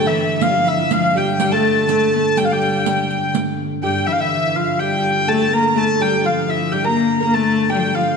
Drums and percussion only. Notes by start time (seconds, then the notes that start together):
0.41 riq
0.67 riq
0.91 riq
1.40 riq
1.89 riq
2.13 riq
2.37 riq
2.62 riq
2.86 riq
3.10 riq
3.35 riq